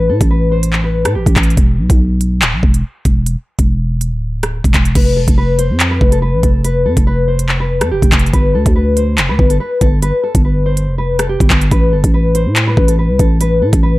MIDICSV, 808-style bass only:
0, 0, Header, 1, 2, 480
1, 0, Start_track
1, 0, Tempo, 422535
1, 1788, Time_signature, 4, 2, 24, 8
1, 15890, End_track
2, 0, Start_track
2, 0, Title_t, "808-style bass"
2, 0, Program_c, 0, 38
2, 0, Note_on_c, 0, 33, 107
2, 108, Note_on_c, 0, 45, 103
2, 125, Note_off_c, 0, 33, 0
2, 229, Note_off_c, 0, 45, 0
2, 235, Note_on_c, 0, 33, 112
2, 1195, Note_on_c, 0, 45, 94
2, 1212, Note_off_c, 0, 33, 0
2, 1308, Note_on_c, 0, 33, 100
2, 1325, Note_off_c, 0, 45, 0
2, 1429, Note_off_c, 0, 33, 0
2, 1435, Note_on_c, 0, 33, 107
2, 1540, Note_off_c, 0, 33, 0
2, 1547, Note_on_c, 0, 33, 101
2, 1778, Note_off_c, 0, 33, 0
2, 1788, Note_on_c, 0, 28, 105
2, 2029, Note_on_c, 0, 35, 103
2, 2046, Note_off_c, 0, 28, 0
2, 2149, Note_off_c, 0, 35, 0
2, 2155, Note_on_c, 0, 35, 112
2, 2749, Note_on_c, 0, 26, 101
2, 2766, Note_off_c, 0, 35, 0
2, 2874, Note_on_c, 0, 35, 100
2, 2891, Note_off_c, 0, 26, 0
2, 2982, Note_off_c, 0, 35, 0
2, 2988, Note_on_c, 0, 28, 109
2, 3218, Note_off_c, 0, 28, 0
2, 3467, Note_on_c, 0, 28, 101
2, 3820, Note_off_c, 0, 28, 0
2, 4075, Note_on_c, 0, 28, 108
2, 4666, Note_on_c, 0, 26, 99
2, 4684, Note_off_c, 0, 28, 0
2, 5244, Note_off_c, 0, 26, 0
2, 5275, Note_on_c, 0, 28, 102
2, 5381, Note_off_c, 0, 28, 0
2, 5388, Note_on_c, 0, 28, 101
2, 5618, Note_off_c, 0, 28, 0
2, 5628, Note_on_c, 0, 29, 104
2, 5870, Note_on_c, 0, 28, 109
2, 5887, Note_off_c, 0, 29, 0
2, 5990, Note_off_c, 0, 28, 0
2, 5995, Note_on_c, 0, 29, 108
2, 6477, Note_on_c, 0, 41, 106
2, 6494, Note_off_c, 0, 29, 0
2, 6811, Note_off_c, 0, 41, 0
2, 6828, Note_on_c, 0, 29, 108
2, 7195, Note_on_c, 0, 33, 102
2, 7212, Note_off_c, 0, 29, 0
2, 7302, Note_off_c, 0, 33, 0
2, 7308, Note_on_c, 0, 29, 104
2, 7788, Note_on_c, 0, 41, 101
2, 7805, Note_off_c, 0, 29, 0
2, 7909, Note_off_c, 0, 41, 0
2, 7915, Note_on_c, 0, 29, 109
2, 8876, Note_on_c, 0, 41, 98
2, 8893, Note_off_c, 0, 29, 0
2, 8987, Note_on_c, 0, 29, 99
2, 9004, Note_off_c, 0, 41, 0
2, 9109, Note_off_c, 0, 29, 0
2, 9115, Note_on_c, 0, 29, 106
2, 9220, Note_off_c, 0, 29, 0
2, 9227, Note_on_c, 0, 29, 100
2, 9458, Note_off_c, 0, 29, 0
2, 9468, Note_on_c, 0, 31, 108
2, 9706, Note_on_c, 0, 38, 108
2, 9723, Note_off_c, 0, 31, 0
2, 9828, Note_off_c, 0, 38, 0
2, 9836, Note_on_c, 0, 38, 110
2, 10427, Note_on_c, 0, 29, 104
2, 10444, Note_off_c, 0, 38, 0
2, 10555, Note_on_c, 0, 38, 102
2, 10572, Note_off_c, 0, 29, 0
2, 10662, Note_off_c, 0, 38, 0
2, 10667, Note_on_c, 0, 31, 110
2, 10898, Note_off_c, 0, 31, 0
2, 11147, Note_on_c, 0, 31, 102
2, 11500, Note_off_c, 0, 31, 0
2, 11754, Note_on_c, 0, 31, 110
2, 12348, Note_on_c, 0, 29, 99
2, 12365, Note_off_c, 0, 31, 0
2, 12925, Note_off_c, 0, 29, 0
2, 12954, Note_on_c, 0, 31, 104
2, 13060, Note_off_c, 0, 31, 0
2, 13067, Note_on_c, 0, 31, 100
2, 13298, Note_off_c, 0, 31, 0
2, 13308, Note_on_c, 0, 33, 104
2, 13548, Note_on_c, 0, 31, 104
2, 13565, Note_off_c, 0, 33, 0
2, 13669, Note_off_c, 0, 31, 0
2, 13675, Note_on_c, 0, 33, 109
2, 14154, Note_on_c, 0, 45, 104
2, 14171, Note_off_c, 0, 33, 0
2, 14490, Note_off_c, 0, 45, 0
2, 14508, Note_on_c, 0, 33, 112
2, 14873, Note_on_c, 0, 36, 102
2, 14890, Note_off_c, 0, 33, 0
2, 14981, Note_off_c, 0, 36, 0
2, 14988, Note_on_c, 0, 33, 106
2, 15468, Note_on_c, 0, 45, 107
2, 15485, Note_off_c, 0, 33, 0
2, 15589, Note_off_c, 0, 45, 0
2, 15596, Note_on_c, 0, 33, 110
2, 15890, Note_off_c, 0, 33, 0
2, 15890, End_track
0, 0, End_of_file